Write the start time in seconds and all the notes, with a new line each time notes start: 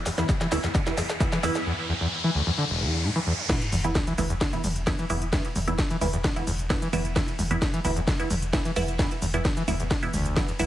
Already playing: riser
0.06 E2, snare, open hi-hat, shaker
0.18 E2 E3 B3 E4, snare, closed hi-hat, shaker
0.29 kick, snare, closed hi-hat, shaker
0.41 E3, snare, closed hi-hat, shaker
0.52 D2 E3 B3 E4, snare, open hi-hat, shaker
0.64 E2, snare, closed hi-hat, shaker
0.75 D3, kick, snare, closed hi-hat, shaker
0.86 E1 E3 B3 E4, snare, closed hi-hat, shaker
0.97 E2, snare, open hi-hat, shaker
1.09 snare, closed hi-hat, shaker
1.20 E2 E3 B3 E4, kick, snare, closed hi-hat, shaker
1.32 E3, snare, closed hi-hat, shaker
1.43 E2 E3 B3 E4, snare, open hi-hat, shaker
1.55 snare, closed hi-hat, shaker
1.66 E2
1.89 E2
2.01 E2
2.24 E3
2.35 D2
2.47 E2
2.58 D3
2.70 E1
2.81 E2
3.04 A2, high tom
3.16 E3, high tom
3.27 E2
3.39 mid tom
3.49 E2 E3 B3 E4, kick, snare, closed hi-hat, mid tom, crash, ride, sub drop, shaker
3.61 closed hi-hat, shaker
3.72 E1 E2, mid tom, open hi-hat, shaker
3.84 E1 E2 E3 B3 E4, closed hi-hat, shaker
3.95 kick, snare, closed hi-hat, mid tom, ride, shaker
4.07 E3, closed hi-hat, shaker
4.18 E1 D2 E3 B3 E4, mid tom, open hi-hat, shaker
4.30 E1 E2, closed hi-hat, shaker
4.41 D3, kick, snare, closed hi-hat, mid tom, ride, shaker
4.53 E1 E3 B3 E4, closed hi-hat, shaker
4.64 E1 E2, mid tom, open hi-hat, shaker
4.76 E1, closed hi-hat, shaker
4.87 E2 E3 B3 E4, kick, snare, closed hi-hat, mid tom, ride, shaker
4.99 E3, closed hi-hat, shaker
5.10 E1 E2 E3 B3 E4, mid tom, open hi-hat, shaker
5.22 E1, closed hi-hat, shaker
5.33 E2 E3 B3 E4, kick, snare, closed hi-hat, mid tom, ride, shaker
5.45 closed hi-hat, shaker
5.55 E1 E2, mid tom, open hi-hat, shaker
5.68 E1 E2 E3 B3 E4, closed hi-hat, shaker
5.78 kick, snare, closed hi-hat, mid tom, ride, shaker
5.90 E3, closed hi-hat, shaker
6.01 E1 D2 E3 B3 E4, mid tom, open hi-hat, shaker
6.13 E1 E2, closed hi-hat, shaker
6.24 D3, kick, snare, closed hi-hat, mid tom, ride, shaker
6.36 E1 E3 B3 E4, closed hi-hat, shaker
6.47 E1 E2, mid tom, open hi-hat, shaker
6.59 E1, closed hi-hat, shaker
6.70 E2 E3 B3 E4, kick, snare, closed hi-hat, mid tom, ride, shaker
6.82 E3, closed hi-hat, shaker
6.93 E1 E2 E3 B3 E4, mid tom, open hi-hat, shaker
7.05 E1, closed hi-hat, shaker
7.16 E2 E3 B3 E4, kick, snare, closed hi-hat, mid tom, ride, shaker
7.28 closed hi-hat, shaker
7.39 E1 E2, mid tom, open hi-hat, shaker
7.51 E1 E2 E3 B3 E4, closed hi-hat, shaker
7.62 kick, snare, closed hi-hat, mid tom, ride, shaker
7.74 E3, closed hi-hat, shaker
7.85 E1 D2 E3 B3 E4, mid tom, open hi-hat, shaker
7.96 E1 E2, closed hi-hat, shaker
8.07 D3, kick, snare, closed hi-hat, mid tom, ride, shaker
8.19 E1 E3 B3 E4, closed hi-hat, shaker
8.30 E1 E2, mid tom, open hi-hat, shaker
8.42 E1, closed hi-hat, shaker
8.53 E2 E3 B3 E4, kick, snare, closed hi-hat, mid tom, ride, shaker
8.65 E3, closed hi-hat, shaker
8.76 E1 E2 E3 B3 E4, mid tom, open hi-hat, shaker
8.88 E1, closed hi-hat, shaker
8.99 E2 E3 B3 E4, kick, snare, closed hi-hat, mid tom, ride, shaker
9.11 closed hi-hat, shaker
9.22 E1 E2, mid tom, open hi-hat, shaker
9.34 E1 E2 E3 B3 E4, closed hi-hat, shaker
9.45 kick, snare, closed hi-hat, mid tom, ride, shaker
9.57 E3, closed hi-hat, shaker
9.68 E1 D2 E3 B3 E4, mid tom, open hi-hat, shaker
9.80 E1 E2, closed hi-hat, shaker
9.91 D3, kick, snare, closed hi-hat, mid tom, ride, shaker
10.03 E1 E3 B3 E4, closed hi-hat, shaker
10.14 E1 D2, mid tom, open hi-hat, shaker
10.26 E1, closed hi-hat, shaker
10.36 E2 E3 B3 E4, kick, snare, closed hi-hat, mid tom, ride, shaker
10.48 E2, closed hi-hat, shaker
10.59 E1 D2 E3 B3 E4, mid tom, open hi-hat, shaker